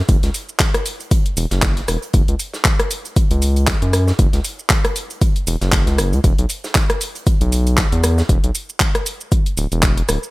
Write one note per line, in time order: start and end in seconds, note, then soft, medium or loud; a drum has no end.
0.09 0.18 F#1 loud
0.09 kick loud
0.09 closed hi-hat medium
0.09 closed hi-hat loud
0.09 shaker soft
0.23 0.30 C#2 medium
0.23 snare soft
0.23 closed hi-hat medium
0.23 shaker soft
0.34 closed hi-hat medium
0.34 open hi-hat loud
0.34 shaker medium
0.49 shaker soft
0.59 kick loud
0.59 snare loud
0.59 clap loud
0.59 closed hi-hat loud
0.59 closed hi-hat medium
0.59 shaker soft
0.74 cross-stick medium
0.74 closed hi-hat medium
0.74 closed hi-hat soft
0.74 shaker soft
0.86 closed hi-hat medium
0.86 open hi-hat loud
0.86 shaker medium
1.00 closed hi-hat soft
1.00 shaker soft
1.11 kick loud
1.11 closed hi-hat medium
1.11 closed hi-hat loud
1.11 shaker soft
1.26 closed hi-hat medium
1.26 shaker soft
1.37 1.46 E1 loud
1.37 closed hi-hat medium
1.37 open hi-hat loud
1.37 shaker medium
1.51 1.81 F#1 medium
1.51 snare medium
1.51 closed hi-hat soft
1.51 shaker soft
1.62 kick loud
1.62 snare loud
1.62 clap loud
1.62 closed hi-hat medium
1.62 shaker soft
1.77 snare soft
1.77 closed hi-hat medium
1.77 shaker soft
1.88 1.97 E1 medium
1.88 cross-stick medium
1.88 closed hi-hat medium
1.88 open hi-hat loud
1.88 shaker medium
2.02 closed hi-hat soft
2.02 shaker soft
2.13 2.23 F#1 loud
2.13 kick loud
2.13 closed hi-hat loud
2.13 closed hi-hat medium
2.13 shaker soft
2.28 2.35 C#2 medium
2.28 closed hi-hat medium
2.28 shaker soft
2.39 closed hi-hat medium
2.39 open hi-hat loud
2.39 shaker medium
2.54 snare medium
2.54 shaker soft
2.65 kick loud
2.65 snare loud
2.65 clap loud
2.65 closed hi-hat medium
2.65 shaker soft
2.80 cross-stick medium
2.80 closed hi-hat medium
2.80 shaker soft
2.91 closed hi-hat medium
2.91 open hi-hat loud
2.91 shaker medium
3.05 closed hi-hat soft
3.05 shaker soft
3.16 kick loud
3.16 closed hi-hat medium
3.16 shaker soft
3.30 3.73 C#2 medium
3.30 closed hi-hat soft
3.30 closed hi-hat medium
3.30 shaker soft
3.42 closed hi-hat medium
3.42 open hi-hat loud
3.42 shaker medium
3.56 closed hi-hat soft
3.56 shaker soft
3.67 kick loud
3.67 snare loud
3.67 clap loud
3.67 closed hi-hat medium
3.67 closed hi-hat loud
3.67 shaker soft
3.82 4.12 F#2 medium
3.82 closed hi-hat medium
3.82 shaker soft
3.93 cross-stick medium
3.93 closed hi-hat medium
3.93 open hi-hat loud
3.93 shaker medium
4.08 snare medium
4.08 shaker soft
4.19 4.28 F#1 loud
4.19 kick loud
4.19 closed hi-hat medium
4.19 shaker soft
4.33 4.40 C#2 medium
4.33 snare soft
4.33 closed hi-hat medium
4.33 shaker soft
4.45 closed hi-hat medium
4.45 open hi-hat loud
4.45 shaker medium
4.59 shaker soft
4.70 kick loud
4.70 snare loud
4.70 clap loud
4.70 closed hi-hat medium
4.70 shaker soft
4.85 cross-stick medium
4.85 closed hi-hat medium
4.85 closed hi-hat soft
4.85 shaker soft
4.96 closed hi-hat medium
4.96 open hi-hat loud
4.96 shaker medium
5.10 closed hi-hat soft
5.10 shaker soft
5.21 kick loud
5.21 closed hi-hat medium
5.21 shaker soft
5.36 closed hi-hat soft
5.36 shaker soft
5.47 5.56 E1 loud
5.47 closed hi-hat medium
5.47 open hi-hat loud
5.47 shaker medium
5.61 5.87 F#1 medium
5.61 snare medium
5.61 closed hi-hat soft
5.61 shaker soft
5.72 kick loud
5.72 snare loud
5.72 clap loud
5.72 closed hi-hat medium
5.72 shaker soft
5.87 6.00 C#2 loud
5.87 snare soft
5.87 closed hi-hat medium
5.87 shaker soft
5.98 6.14 F#1 medium
5.98 cross-stick medium
5.98 closed hi-hat medium
5.98 open hi-hat loud
5.98 shaker medium
6.13 6.20 C#2 medium
6.13 closed hi-hat soft
6.13 shaker soft
6.24 6.33 E1 loud
6.24 kick loud
6.24 closed hi-hat medium
6.24 shaker soft
6.38 6.46 B1 medium
6.38 closed hi-hat medium
6.38 shaker soft
6.49 closed hi-hat medium
6.49 open hi-hat loud
6.49 shaker medium
6.64 snare medium
6.64 shaker soft
6.75 kick loud
6.75 snare loud
6.75 clap loud
6.75 closed hi-hat medium
6.75 shaker soft
6.90 cross-stick medium
6.90 closed hi-hat medium
6.90 shaker soft
7.01 closed hi-hat medium
7.01 open hi-hat loud
7.01 shaker medium
7.15 closed hi-hat soft
7.15 shaker soft
7.27 kick loud
7.27 closed hi-hat medium
7.27 shaker soft
7.41 7.84 B1 medium
7.41 closed hi-hat soft
7.41 shaker soft
7.52 closed hi-hat medium
7.52 open hi-hat loud
7.52 shaker medium
7.67 closed hi-hat soft
7.67 shaker soft
7.77 kick loud
7.77 snare loud
7.77 clap loud
7.77 closed hi-hat medium
7.77 shaker soft
7.92 8.22 E2 medium
7.92 closed hi-hat medium
7.92 shaker soft
8.04 cross-stick medium
8.04 closed hi-hat medium
8.04 open hi-hat loud
8.04 shaker medium
8.18 snare medium
8.18 shaker soft
8.29 8.38 E1 loud
8.29 kick loud
8.29 closed hi-hat medium
8.29 shaker soft
8.44 8.51 B1 medium
8.44 closed hi-hat medium
8.44 shaker soft
8.55 open hi-hat loud
8.55 shaker medium
8.69 shaker soft
8.80 kick loud
8.80 clap loud
8.80 closed hi-hat medium
8.80 shaker medium
8.95 cross-stick medium
8.95 closed hi-hat medium
8.95 shaker soft
9.06 open hi-hat loud
9.06 shaker medium
9.21 shaker soft
9.32 kick loud
9.32 closed hi-hat medium
9.32 shaker soft
9.46 closed hi-hat medium
9.46 shaker soft
9.57 9.66 D1 loud
9.57 open hi-hat loud
9.57 shaker medium
9.72 10.02 E1 medium
9.72 closed hi-hat soft
9.72 shaker soft
9.82 kick loud
9.82 clap loud
9.82 closed hi-hat medium
9.82 shaker soft
9.97 closed hi-hat medium
9.97 shaker soft
10.09 10.18 D1 medium
10.09 cross-stick medium
10.09 open hi-hat loud
10.09 shaker medium
10.23 shaker soft